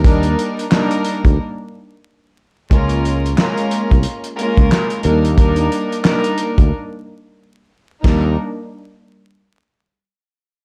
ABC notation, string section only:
X:1
M:4/4
L:1/8
Q:"Swing 16ths" 1/4=90
K:Eb
V:1 name="String section"
[G,B,DEB]2 [G,B,DEB]2 z4 | [A,B,_DFB]2 [A,B,DFB]2 z [A,B,DFB]2 [G,B,=DEB] | [G,B,DEB]2 [G,B,DEB]2 z4 | [G,B,DEB] z6 z |]